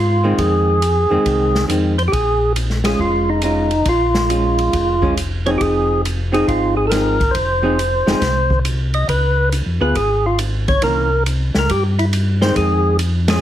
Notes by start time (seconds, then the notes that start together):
Already playing: G#2 F4
0.24 D#3 G#3 C4
0.38 F2 G#4, kick, ride
0.82 hi-hat pedal, ride
1.10 F2 D#3 G#3 C4
1.25 C2, kick, ride
1.55 snare
1.68 F2 D#3 G#3 C4, hi-hat pedal, ride
1.98 C5, ride
2.08 G4
2.12 A#1 G#4, kick, ride
2.56 hi-hat pedal, ride
2.70 snare
2.84 G#3 C#4 F4 G#4, snare, ride
2.99 F1 F4, kick
3.29 D#4
3.42 G#3 C#4 D#4 F4, hi-hat pedal, ride
3.71 ride
3.85 A#1 F4, kick, ride
4.14 snare
4.29 G#3 C#4 F4, hi-hat pedal, ride
4.59 ride
4.73 F1, kick, ride
5.02 G#3 C#4 F4, kick
5.17 hi-hat pedal, ride
5.46 F3 C4 D#4 G#4 C#5, ride
5.58 F1 G4 G#4, kick, ride
6.05 hi-hat pedal, ride
6.32 F3 C4 D#4 G#4, ride
6.48 G#1 F4, kick, ride
6.77 G#4
6.87 F3 C4 A4 A#4
6.91 D#4 G#4, snare, hi-hat pedal, ride
7.20 kick, ride
7.31 F1 C5, kick, ride
7.62 F3 C4 D#4 G#4
7.79 hi-hat pedal, ride
8.07 F1 F3 C4 D#4 G#4, snare
8.21 C2, kick, snare, ride
8.50 kick
8.65 hi-hat pedal, ride
8.94 D#5, ride
9.08 C#2 B4, kick, ride
9.52 hi-hat pedal, ride
9.66 F2
9.80 D2 B3 F4 G#4 B4
9.95 G#1 G#4, kick, ride
10.26 F4
10.39 hi-hat pedal, ride
10.68 C#5, kick, ride
10.82 C2 E3 A#3 C#4 A#4, kick, ride
11.26 hi-hat pedal, ride
11.54 C#2, snare
11.59 A#4
11.69 G2 G4, kick, ride
11.99 E4, ride
12.13 hi-hat pedal, ride
12.41 D#3 G#3 C4 C5, snare
12.56 F2 G#4, kick, ride
12.99 hi-hat pedal, ride
13.28 F3 G#3 C#4 G#4, snare, ride